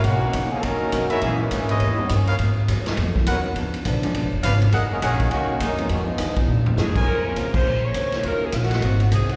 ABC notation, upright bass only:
X:1
M:4/4
L:1/8
Q:"Swing" 1/4=205
K:Bbphr
V:1 name="Upright bass" clef=bass
=B,,,2 ^C,,2 ^D,,2 ^F,,2 | B,,2 A,,2 E,, z =G,,2 | A,,2 G,,2 F,,2 E,,2 | D,,2 B,,, z (3C,, A,,, F,,, A,,,2 |
G,,,2 B,,,2 D,,2 G,,2 | F,,2 E,,2 B,,2 G,, z | [K:Bbm] F,,2 D,,2 B,,,2 D,,2 | E,,2 B,,,2 A,,,2 C,,2 |]